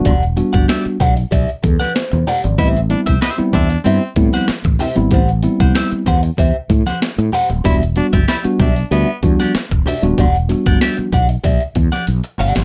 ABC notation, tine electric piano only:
X:1
M:4/4
L:1/16
Q:1/4=95
K:Ador
V:1 name="Tine electric piano"
z2 [G,B,DF]4 z4 A B c2 d2 | [G,B,CE] z [G,B,CE] z2 [G,B,CE] z2 [G,B,CE] z [G,B,CE]2 z2 [CE] [G,B,CE] | z2 [G,B,CE]4 z8 z2 | [G,B,DF] z [G,B,DF] z2 [G,B,DF] z2 [G,B,DF] z [G,B,DF]2 z2 [DF] [G,B,DF] |
z2 [G,B,DF]4 z8 z2 |]